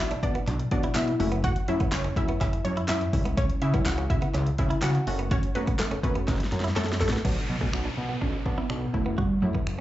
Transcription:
Already playing: synth stab F#3 B3 D4 F#4
0.00 analog synth bass B1, synth pluck E4 E5
0.11 clean electric guitar D4, closed hi-hat
0.23 analog synth bass B2, synth pluck D4 D5, muted clean electric guitar stroke, kick, closed hi-hat
0.35 clean electric guitar B3, closed hi-hat
0.47 analog synth bass B1, clean electric guitar D4, clap, closed hi-hat
0.60 muted clean electric guitar stroke, closed hi-hat
0.71 analog synth bass B2, synth stab F#3 B3 D4 F#4, synth pluck D4 D5, kick, closed hi-hat
0.83 clean electric guitar E4, closed hi-hat
0.95 analog synth bass B2, clean electric guitar D4, synth pluck E4 E5, snare, clap, closed hi-hat
1.08 muted clean electric guitar stroke, closed hi-hat
1.20 analog synth bass F#1, synth stab F#3 A3 C#4 E4, open hi-hat
1.32 clean electric guitar B3, closed hi-hat
1.44 clean electric guitar F#4, synth pluck F#4 F#5, kick, closed hi-hat
1.56 closed hi-hat
1.68 analog synth bass F#2, synth stab F#3 A3 C#4 E4, synth pluck E4 E5, muted clean electric guitar stroke, closed hi-hat
1.80 clean electric guitar B3, kick, closed hi-hat
1.92 analog synth bass F#1, synth pluck C#4 C#5, snare, clap, closed hi-hat
2.04 clean electric guitar C#4, closed hi-hat
2.16 analog synth bass F#2, synth stab F#3 A3 C#4 E4, synth pluck E4 E5, muted clean electric guitar stroke, kick, closed hi-hat
2.28 clean electric guitar B3, closed hi-hat
2.41 analog synth bass F#1, clean electric guitar C#4, synth pluck E4 E5, kick, clap, closed hi-hat
2.53 muted clean electric guitar stroke, closed hi-hat
2.65 analog synth bass F#2, synth pluck C#4 C#5, closed hi-hat
2.77 clean electric guitar E4, closed hi-hat
2.88 analog synth bass F#2, clean electric guitar C#4, synth pluck E4 E5, snare, clap, closed hi-hat
3.01 muted clean electric guitar stroke, closed hi-hat
3.13 analog synth bass C#2, synth stab E3 G3 C#4 E4, kick, open hi-hat
3.25 clean electric guitar B3, closed hi-hat
3.37 clean electric guitar C#4, synth pluck C#4 C#5, kick, closed hi-hat
3.50 closed hi-hat
3.62 analog synth bass C#3, synth pluck E4 E5, muted clean electric guitar stroke, closed hi-hat
3.74 synth stab E3 G3 C#4 E4, clean electric guitar B3, kick, closed hi-hat
3.86 analog synth bass C#2, synth pluck F#4 F#5, snare, clap, closed hi-hat
3.98 clean electric guitar C#4, closed hi-hat
4.10 analog synth bass C#3, synth pluck E4 E5, muted clean electric guitar stroke, kick, closed hi-hat
4.22 clean electric guitar B3, closed hi-hat
4.34 analog synth bass C#2, clean electric guitar C#4, clap, closed hi-hat
4.46 muted clean electric guitar stroke, closed hi-hat
4.58 analog synth bass C#3, synth stab E3 G3 C#4 E4, synth pluck E4 E5, kick, closed hi-hat
4.70 clean electric guitar E4, closed hi-hat
4.82 analog synth bass C#3, clean electric guitar C#4, synth pluck F#4 F#5, snare, clap, closed hi-hat
4.95 muted clean electric guitar stroke, closed hi-hat
5.07 analog synth bass F#1, synth stab F#3 A3 C#4 F#4, open hi-hat
5.19 clean electric guitar B3, closed hi-hat
5.31 synth pluck C#4 C#5, clean electric guitar F#4, kick, closed hi-hat
5.43 closed hi-hat
5.55 analog synth bass F#2, synth stab F#3 A3 C#4 F#4, synth pluck B3 B4, muted clean electric guitar stroke, closed hi-hat
5.67 clean electric guitar B3, kick, closed hi-hat
5.79 analog synth bass F#1, synth pluck A3 A4, snare, clap, closed hi-hat
5.91 clean electric guitar C#4, closed hi-hat
6.03 analog synth bass F#2, synth stab F#3 A3 C#4 F#4, synth pluck B3 B4, muted clean electric guitar stroke, kick, closed hi-hat
6.15 clean electric guitar B3, closed hi-hat
6.28 analog synth bass F#1, clean electric guitar C#4, kick, snare, clap, closed hi-hat
6.36 muted clean electric guitar stroke, snare
6.40 snare, closed hi-hat
6.52 analog synth bass F#2, snare, closed hi-hat
6.60 clean electric guitar E4, snare
6.64 closed hi-hat
6.68 snare
6.76 analog synth bass F#2, synth pluck A3 A4, clean electric guitar C#4, snare, clap, closed hi-hat
6.84 muted clean electric guitar stroke, snare
6.89 snare, closed hi-hat
7.00 analog synth bass A1, synth pluck A3 A4, snare, open hi-hat
7.09 clean electric guitar B3, snare
7.13 closed hi-hat
7.17 snare
7.25 analog synth bass B1, synth stab F#3 B3 D4, soft synth lead F#3, clean electric guitar B3, kick, crash, downlifter
7.49 analog synth bass B2, soft synth lead F#3, muted clean electric guitar stroke
7.61 analog synth bass B2, synth stab F#3 B3 C#4, clean electric guitar A3, kick
7.73 analog synth bass B1, soft synth lead B3, finger snap
7.85 clean electric guitar D4
7.97 analog synth bass B2, soft synth lead B3, muted clean electric guitar stroke
8.09 clean electric guitar B3
8.21 analog synth bass B1, soft synth lead C#4, clean electric guitar D4, kick
8.34 muted clean electric guitar stroke
8.45 analog synth bass B2, synth stab F#3 B3 D4, kick
8.58 soft synth lead B3, clean electric guitar E4
8.70 analog synth bass B1, clean electric guitar D4, finger snap
8.82 muted clean electric guitar stroke
8.94 analog synth bass F#1, synth stab F#3 A3 E4, soft synth lead A3, kick
9.06 clean electric guitar B3
9.18 soft synth lead G3, clean electric guitar F#4, kick
9.42 analog synth bass F#2, synth stab F#3 A3 E4, soft synth lead F#3, muted clean electric guitar stroke
9.55 analog synth bass F#2, clean electric guitar B3, kick
9.67 analog synth bass F#1, finger snap

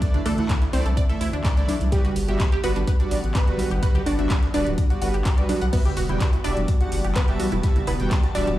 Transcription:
Already playing: analog synth pad D3 E3 A3 E4, synth pluck B3 B4
0.02 supersaw synth A3 E4 D5, synth arpeggio sound D5, kick, closed hi-hat
0.14 synth arpeggio sound D4, closed hi-hat, low conga
0.26 sub bass D2, synth pluck A3 A4, synth arpeggio sound D4, closed hi-hat, open hi-hat
0.38 sub bass D2, supersaw synth A3 E4 F#5, closed hi-hat, low conga
0.49 kick, snare, clap, closed hi-hat
0.62 synth arpeggio sound E4, snare, closed hi-hat
0.73 sub bass C2, supersaw synth A3 E4 D5, synth pluck C4 C5, snare, closed hi-hat, open hi-hat
0.85 sub bass C2, synth arpeggio sound A4, closed hi-hat, high conga
0.97 synth arpeggio sound D5, kick, closed hi-hat
1.09 supersaw synth A3 E4 E5, synth arpeggio sound A4, closed hi-hat
1.21 sub bass D2, synth arpeggio sound E4, closed hi-hat, open hi-hat
1.33 sub bass D2, synth arpeggio sound D4, closed hi-hat
1.44 synth arpeggio sound D5, kick, snare, clap, closed hi-hat
1.57 sub bass C2, supersaw synth A3 E4 D5, synth arpeggio sound D4, closed hi-hat
1.68 synth arpeggio sound D4, closed hi-hat, open hi-hat, high conga
1.80 sub bass C2, closed hi-hat, high conga
1.92 analog synth pad D3 G3 B3 F#5, supersaw synth G3 F#4 B4, synth pluck G3 G4, kick, closed hi-hat
2.05 synth arpeggio sound F#4, closed hi-hat, low conga
2.16 sub bass G1, closed hi-hat, open hi-hat
2.28 sub bass G1, supersaw synth G3 F#4 E5, synth arpeggio sound G4, closed hi-hat, low conga
2.39 synth arpeggio sound B4, kick, snare, clap, closed hi-hat
2.52 synth arpeggio sound G4, closed hi-hat
2.64 sub bass G1, supersaw synth G3 F#4 B4, synth pluck B3 B4, synth arpeggio sound F#4, closed hi-hat, open hi-hat
2.76 sub bass G1, synth arpeggio sound D4, closed hi-hat, high conga
2.87 synth arpeggio sound B4, kick, closed hi-hat
3.00 supersaw synth G3 F#4 D5, synth arpeggio sound D4, closed hi-hat
3.11 sub bass A1, synth arpeggio sound D4, closed hi-hat, open hi-hat
3.24 sub bass A1, closed hi-hat
3.35 synth pluck B3 B4, kick, snare, clap, closed hi-hat
3.47 sub bass G1, supersaw synth G3 F#4 B4, synth arpeggio sound F#4, closed hi-hat
3.58 closed hi-hat, open hi-hat, high conga
3.71 sub bass G1, synth arpeggio sound G4, closed hi-hat, high conga
3.83 supersaw synth G3 F#4 B4, synth arpeggio sound B4, kick, closed hi-hat
3.94 synth arpeggio sound G4, closed hi-hat, high conga, low conga
4.06 sub bass G1, synth pluck D4 D5, synth arpeggio sound F#4, closed hi-hat, open hi-hat
4.18 sub bass G1, supersaw synth G3 F#4 E5, synth arpeggio sound D4, closed hi-hat, low conga
4.30 synth arpeggio sound B4, kick, snare, clap, closed hi-hat
4.43 synth arpeggio sound D4, snare, closed hi-hat
4.54 sub bass D1, supersaw synth G3 F#4 B4, synth pluck D4 D5, synth arpeggio sound D4, snare, closed hi-hat, open hi-hat
4.66 sub bass D1, closed hi-hat, high conga
4.78 kick, closed hi-hat
4.90 supersaw synth G3 F#4 D5, synth arpeggio sound F#4, closed hi-hat
5.02 sub bass G1, supersaw synth G3 F#4 B4, synth arpeggio sound F#4, closed hi-hat, open hi-hat
5.14 sub bass G1, synth arpeggio sound G4, closed hi-hat
5.25 synth arpeggio sound G4, kick, snare, clap, closed hi-hat
5.38 sub bass B1, supersaw synth G3 F#4 B4, synth arpeggio sound D5, closed hi-hat
5.49 supersaw synth G3 F#4 B4, synth arpeggio sound D4, snare, closed hi-hat, open hi-hat, high conga
5.61 sub bass B1, synth arpeggio sound F#5, closed hi-hat, high conga
5.73 analog synth pad E3 F#4, supersaw synth G3 F#4 E5, synth pluck B3 B4, synth arpeggio sound B4, synth texture A5, kick, closed hi-hat, crash
5.85 synth arpeggio sound G4, closed hi-hat, low conga
5.97 sub bass E1, synth arpeggio sound F#4, closed hi-hat, open hi-hat
6.09 sub bass E1, supersaw synth G3 F#4 G5, synth arpeggio sound E4, closed hi-hat, low conga
6.20 synth arpeggio sound B4, kick, snare, clap, closed hi-hat
6.33 synth arpeggio sound E4, closed hi-hat
6.44 sub bass E1, supersaw synth G3 F#4 E5, synth pluck D4 D5, synth arpeggio sound E4, closed hi-hat, open hi-hat
6.57 sub bass E1, closed hi-hat, high conga
6.68 kick, closed hi-hat
6.81 supersaw synth G3 F#4 F#5, synth arpeggio sound F#4, closed hi-hat
6.92 sub bass F#1, open hi-hat
7.04 sub bass F#1, synth arpeggio sound G4, closed hi-hat
7.15 synth pluck B3 B4, synth arpeggio sound B4, kick, snare, clap, closed hi-hat
7.28 sub bass E1, supersaw synth G3 F#4 E5, synth arpeggio sound G4, closed hi-hat
7.40 synth arpeggio sound F#4, closed hi-hat, open hi-hat, high conga
7.52 sub bass E1, synth arpeggio sound E4, closed hi-hat, high conga
7.63 supersaw synth G3 F#4 E5, synth arpeggio sound B4, kick, closed hi-hat
7.76 synth arpeggio sound E4, closed hi-hat, low conga
7.87 sub bass E1, synth pluck B3 B4, synth arpeggio sound E4, closed hi-hat, open hi-hat
8.00 sub bass E1, supersaw synth G3 F#4 G5, closed hi-hat, low conga
8.11 kick, snare, clap, closed hi-hat
8.23 synth arpeggio sound F#4, snare, closed hi-hat
8.35 sub bass D1, supersaw synth G3 F#4 E5, synth pluck D4 D5, snare, closed hi-hat, open hi-hat
8.47 sub bass D1, synth arpeggio sound G4, closed hi-hat, high conga

